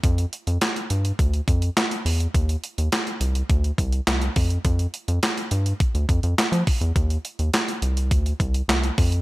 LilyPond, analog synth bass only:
\new Staff \with { instrumentName = "Analog synth bass" } { \clef bass \time 4/4 \key f \lydian \tempo 4 = 104 f,8 r16 f,16 r8 g,8 d,8 f,8 r8 e,8 | ees,8 r16 ees,16 r8 c,8 d,8 c,8 c,8 f,8 | f,8 r16 f,16 r8 g,8 r16 d,16 f,16 f,16 r16 f16 r16 e,16 | ees,8 r16 ees,16 r8 c,8 d,8 c,8 c,8 f,8 | }